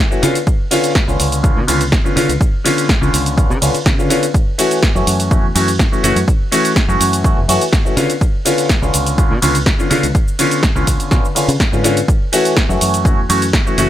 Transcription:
0.10 E3 A3 C#4 F#4, shaker
0.22 C#3 D3 B3 C#4 F4, open hi-hat, ride, shaker
0.35 closed hi-hat, shaker
0.47 kick, closed hi-hat, shaker
0.71 D3 B3 C#4 F4, open hi-hat, ride, shaker
0.84 closed hi-hat, shaker
0.95 kick, snare, closed hi-hat, shaker
1.08 C#2 D3 B3 C#4 F4, shaker
1.20 C#2, open hi-hat, ride, shaker
1.32 closed hi-hat, shaker
1.43 D3 B3 C#4 F4, kick, closed hi-hat, shaker
1.57 B2
1.67 C#2 D3 B3 C#4 F4, open hi-hat, ride, shaker
1.81 closed hi-hat, shaker
1.92 kick, snare, closed hi-hat, shaker
2.04 D3 B3 C#4 F4, shaker
2.16 C#3 D3 B3 C#4 F4, open hi-hat, ride, shaker
2.29 C#2, closed hi-hat, shaker
2.41 kick, closed hi-hat, shaker
2.64 D3 B3 C#4 F4, open hi-hat, ride, shaker
2.78 closed hi-hat, shaker
2.89 kick, snare, closed hi-hat, shaker
3.01 C#2 D3 B3 C#4 F4, shaker
3.13 C#2, open hi-hat, ride, shaker
3.26 closed hi-hat, shaker
3.37 D3 B3 C#4 F4, kick, closed hi-hat, shaker
3.50 C#3, shaker
3.61 C#2 D3 B3 C#4 F4, open hi-hat, ride, shaker
3.75 muted fingered electric bass stroke, closed hi-hat, shaker
3.86 C#3, kick, snare, closed hi-hat, shaker
3.98 D3 B3 C#4 F4, shaker
4.10 D3 B3 C#4 F4, open hi-hat, ride, shaker
4.23 closed hi-hat, shaker
4.34 kick, closed hi-hat, shaker
4.58 E3 A3 C#4 F#4, open hi-hat, ride, shaker
4.71 closed hi-hat, shaker
4.83 kick, snare, closed hi-hat, shaker
4.95 F#2 E3 A3 C#4 F#4, shaker
5.07 F#2, open hi-hat, ride, shaker
5.20 closed hi-hat, shaker
5.31 E3 A3 C#4 F#4, kick, closed hi-hat, shaker
5.44 E2
5.55 F#2 E3 A3 C#4 F#4, open hi-hat, ride, shaker
5.68 closed hi-hat, shaker
5.79 kick, snare, closed hi-hat, shaker
5.91 E3 A3 C#4 F#4, shaker
6.03 F#1 E3 A3 C#4 F#4, open hi-hat, ride, shaker
6.16 F#2, closed hi-hat, shaker
6.28 kick, closed hi-hat, shaker
6.51 E3 A3 C#4 F#4, open hi-hat, ride, shaker
6.65 closed hi-hat, shaker
6.76 kick, snare, closed hi-hat, shaker
6.88 F#2 E3 A3 C#4 F#4, shaker
7.00 F#2, open hi-hat, ride, shaker
7.13 closed hi-hat, shaker
7.24 E3 A3 C#4 F#4, kick, closed hi-hat, shaker
7.37 F#1
7.48 F#2 E3 A3 C#4 F#4, open hi-hat, ride, shaker
7.61 closed hi-hat, shaker
7.73 kick, snare, closed hi-hat, shaker
7.85 E3 A3 C#4 F#4, shaker
7.97 C#3 D3 B3 C#4 F4, open hi-hat, ride, shaker
8.10 closed hi-hat, shaker
8.21 kick, closed hi-hat, shaker
8.45 D3 B3 C#4 F4, open hi-hat, ride, shaker
8.58 closed hi-hat, shaker
8.69 kick, snare, closed hi-hat, shaker
8.82 C#2 D3 B3 C#4 F4, shaker
8.94 C#2, open hi-hat, ride, shaker
9.06 closed hi-hat, shaker
9.18 D3 B3 C#4 F4, kick, closed hi-hat, shaker
9.31 B2
9.42 C#2 D3 B3 C#4 F4, open hi-hat, ride, shaker
9.55 closed hi-hat, shaker
9.66 kick, snare, closed hi-hat, shaker
9.79 D3 B3 C#4 F4, shaker
9.90 C#3 D3 B3 C#4 F4, open hi-hat, ride, shaker
10.03 C#2, closed hi-hat, shaker
10.15 kick, closed hi-hat, shaker
10.28 shaker
10.39 D3 B3 C#4 F4, open hi-hat, ride, shaker
10.51 closed hi-hat, shaker
10.63 kick, snare, closed hi-hat, shaker
10.75 C#2 D3 B3 C#4 F4, shaker
10.87 C#2, kick, open hi-hat, ride, shaker
11.00 closed hi-hat, shaker
11.11 B2 D3 B3 C#4 F4, kick, snare, closed hi-hat, shaker
11.25 shaker
11.35 D3 B3 C#4 F4, open hi-hat, ride, shaker
11.48 C#3, closed hi-hat, shaker
11.60 kick, snare, closed hi-hat, shaker
11.72 G#2 D3 B3 C#4 F4, shaker
11.84 D3 B3 C#4 F4, open hi-hat, ride, shaker
11.97 closed hi-hat, shaker
12.08 kick, closed hi-hat, shaker
12.32 E3 A3 C#4 F#4, open hi-hat, ride, shaker
12.45 closed hi-hat, shaker
12.57 kick, snare, closed hi-hat, shaker
12.69 F#2 E3 A3 C#4 F#4, shaker
12.81 F#2, open hi-hat, ride, shaker
12.94 closed hi-hat, shaker
13.05 E3 A3 C#4 F#4, kick, closed hi-hat, shaker
13.18 E2
13.29 F#2 E3 A3 C#4 F#4, open hi-hat, ride, shaker
13.42 closed hi-hat, shaker
13.53 kick, snare, closed hi-hat, shaker
13.66 E3 A3 C#4 F#4, shaker
13.78 F#1 E3 A3 C#4 F#4, open hi-hat, ride, shaker

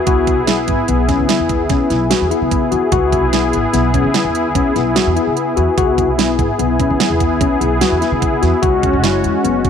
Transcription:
Already playing: B3 E4 G#4
0.07 C#2 F#4, kick, closed hi-hat
0.27 kick, closed hi-hat
0.38 B1
0.47 E4, snare, closed hi-hat
0.68 G#1, kick, closed hi-hat
0.88 B1 B3, closed hi-hat
1.08 C#4, kick, snare, closed hi-hat
1.19 C#3
1.29 E4, snare, closed hi-hat
1.40 E2
1.49 kick, closed hi-hat
1.69 B1 C#4, kick, snare, closed hi-hat
1.90 B1 E4, snare, closed hi-hat
2.10 F#4, snare, closed hi-hat
2.21 E2
2.31 E4, closed hi-hat
2.42 C#3
2.51 kick, closed hi-hat
2.71 E2 F#4, closed hi-hat
2.91 C#2 B3 E4 F#4 G#4, kick, closed hi-hat
3.12 kick, closed hi-hat
3.23 B1
3.33 E4, snare, closed hi-hat
3.53 G#1, closed hi-hat
3.73 B1 B3, snare, closed hi-hat
3.94 C#4, kick, closed hi-hat
4.04 C#3
4.14 E4, snare, closed hi-hat
4.25 E2
4.35 closed hi-hat
4.55 B1 C#4, kick, closed hi-hat
4.76 B1 E4, snare, closed hi-hat
4.96 F#4, snare, closed hi-hat
5.07 E2
5.16 E4, closed hi-hat
5.27 C#3
5.37 closed hi-hat
5.57 E2 F#4, closed hi-hat
5.78 C#2 F#4, kick, closed hi-hat
5.98 kick, closed hi-hat
6.08 B1
6.18 E4, snare, closed hi-hat
6.39 G#1, kick, closed hi-hat
6.59 B1 B3, closed hi-hat
6.79 C#4, kick, closed hi-hat
6.90 C#3
7.00 E4, snare, closed hi-hat
7.10 E2
7.20 kick, closed hi-hat
7.41 B1 C#4, kick, closed hi-hat
7.61 B1 E4, closed hi-hat
7.81 F#4, snare, closed hi-hat
7.92 E2
8.01 E4, snare, closed hi-hat
8.12 C#3
8.22 kick, closed hi-hat
8.42 E2 F#4, snare, closed hi-hat
8.61 C#2 G#3 C#4 F#4, kick, closed hi-hat
8.83 kick, closed hi-hat
8.93 F#1
9.03 E4, snare, closed hi-hat
9.24 E2, closed hi-hat
9.44 F#1 B3, closed hi-hat
9.65 C#4, kick, closed hi-hat

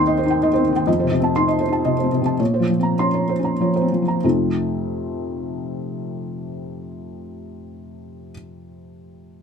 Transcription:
Already playing: D#2 D#3 C4 D#4 C5 D#5 G5 C6
0.07 D#5
0.18 C5
0.26 D#4
0.30 G5
0.43 D#3 D#5
0.53 C5
0.58 C4
0.64 D#3
0.72 D#3 G5
0.87 F2 D#5
0.99 C5
1.04 C3
1.12 C3
1.20 C4 A5
1.36 D#4 C6
1.48 D#5
1.60 C5
1.68 D#4
1.72 A5
1.85 C3 D#5
1.98 C5
2.03 C4
2.12 C3
2.22 C3
2.26 A5
2.39 A#2 C#5
2.54 C5
2.60 F3
2.70 F3
2.79 C4 A#5
2.99 C#4 C6
3.14 C#5
3.29 C5
3.39 C#4
3.44 A#5
3.60 F3 C#5
3.76 C5
3.81 C4
3.92 F3
4.02 F3
4.08 A#5
4.24 F2 C3 A3 C4 D#4 F4

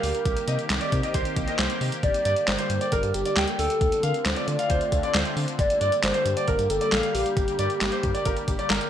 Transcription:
Already playing: D3 G3 A#3 G4 F5
0.03 D2 A#4, open hi-hat
0.15 closed hi-hat
0.25 C2 D#3 C4, kick, closed hi-hat
0.37 closed hi-hat
0.48 C3 D#5, closed hi-hat
0.59 closed hi-hat
0.70 C2, snare, clap, closed hi-hat
0.81 D5, closed hi-hat
0.92 C3, kick, closed hi-hat
1.03 D#5, closed hi-hat
1.14 C2 C5, kick, closed hi-hat
1.25 closed hi-hat
1.36 C2, kick, closed hi-hat
1.48 D#5, closed hi-hat
1.59 C2 C5, snare, clap, closed hi-hat
1.70 closed hi-hat
1.81 C3, open hi-hat
1.92 closed hi-hat
2.03 G1 D3 G3 D5, kick, closed hi-hat
2.14 closed hi-hat
2.25 G2 D5, closed hi-hat
2.36 closed hi-hat
2.48 G1 C5, snare, clap, closed hi-hat
2.59 C5, closed hi-hat
2.70 G2, closed hi-hat
2.81 D5, closed hi-hat
2.92 G1 A#4, kick, closed hi-hat
3.03 G2, closed hi-hat
3.14 G1 G4, closed hi-hat
3.25 D5, closed hi-hat
3.36 D2 G4 G5, snare, clap, closed hi-hat
3.48 closed hi-hat
3.59 D2 A4, open hi-hat
3.70 closed hi-hat
3.81 D2 A3 C4 F4, kick, closed hi-hat
3.92 closed hi-hat
4.03 D3 A#4 F5, closed hi-hat
4.14 closed hi-hat
4.25 D2 C5, snare, clap, closed hi-hat
4.36 D5, closed hi-hat
4.48 D3 D5, closed hi-hat
4.59 F5, closed hi-hat
4.70 D2 C5, kick, closed hi-hat
4.81 closed hi-hat
4.92 D2, kick, closed hi-hat
5.03 D5, closed hi-hat
5.14 D2 C5, snare, clap, closed hi-hat
5.25 closed hi-hat
5.37 D3, open hi-hat
5.48 closed hi-hat
5.59 G1 G3 A#3 G4 D5, kick, closed hi-hat
5.70 closed hi-hat
5.81 G2 D5, closed hi-hat
5.92 closed hi-hat
6.03 G1 C5, snare, clap, closed hi-hat
6.14 C5, closed hi-hat
6.25 G2, closed hi-hat
6.37 D5, closed hi-hat
6.48 G1 A#4, kick, closed hi-hat
6.59 G2, closed hi-hat
6.70 G1 A4, closed hi-hat
6.81 D5, closed hi-hat
6.92 A#1 F5, snare, clap, closed hi-hat
7.03 closed hi-hat
7.14 A#1 G4, open hi-hat
7.26 closed hi-hat
7.37 G1, kick, closed hi-hat
7.48 closed hi-hat
7.59 G2 D5, closed hi-hat
7.70 closed hi-hat
7.81 G1, snare, clap, closed hi-hat
7.92 C5, closed hi-hat
8.03 G2, kick, closed hi-hat
8.14 D5, closed hi-hat
8.25 G1 A#4, kick, closed hi-hat
8.37 closed hi-hat
8.48 G1, kick, closed hi-hat
8.59 D5, closed hi-hat
8.70 G1 A#4, snare, clap, closed hi-hat
8.81 closed hi-hat

